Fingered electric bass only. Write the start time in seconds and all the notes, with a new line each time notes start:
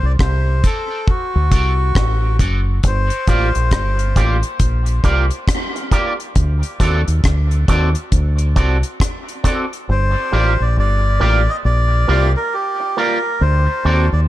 0.03 C2
0.20 C2
1.36 D2
1.52 C2
1.96 A1
2.40 F#1
2.84 G1
3.28 A1
3.56 A#1
3.72 G1
4.16 A1
4.60 A#1
5.04 C2
6.36 D2
6.80 D#2
7.08 D#2
7.24 D2
7.69 D#2
8.12 D2
8.57 C2
9.89 G1
10.33 A1
10.60 A#1
10.77 G1
11.21 A1
11.65 A#1
12.09 C2
13.41 D2
13.85 D#2
14.13 D#2